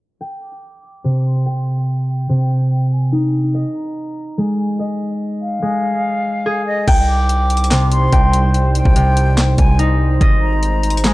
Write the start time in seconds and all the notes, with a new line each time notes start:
0.21 G5
0.42 D6
1.04 C3
1.25 C6
1.46 G5
2.08 G5
2.29 C3
2.92 G#5
3.12 D#4
3.54 D#5
3.75 A#5
4.38 G#3
4.58 G#5
4.79 D#5
5.42 F5
5.62 G#3
6.46 G#4
6.67 D#5
6.88 C2 G3 D#4 C5 G5, kick, closed hi-hat, crash
7.08 D6
7.29 closed hi-hat
7.50 closed hi-hat
7.57 closed hi-hat
7.64 closed hi-hat
7.71 C3, snare, clap, closed hi-hat
7.92 C6, closed hi-hat
8.12 C2 G5, kick, closed hi-hat
8.33 closed hi-hat
8.54 closed hi-hat
8.75 G5, closed hi-hat
8.85 C2, kick
8.96 C3, closed hi-hat
9.17 closed hi-hat
9.37 snare, clap, closed hi-hat
9.58 C2 G#5, kick, closed hi-hat
9.79 D#4, closed hi-hat
10.21 G#1 G#3 C5 D#5, kick, closed hi-hat
10.42 A#5
10.63 closed hi-hat
10.83 closed hi-hat
10.90 closed hi-hat
10.97 closed hi-hat
11.04 G#3, snare, clap, closed hi-hat